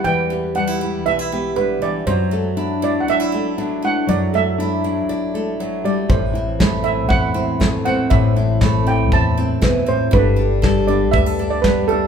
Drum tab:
SD |--------|--------|--------|--o---o-|
BD |--------|--------|--------|o-o-o-o-|

SD |--o---o-|--o---o-|
BD |o-o-o-o-|o-o-o-o-|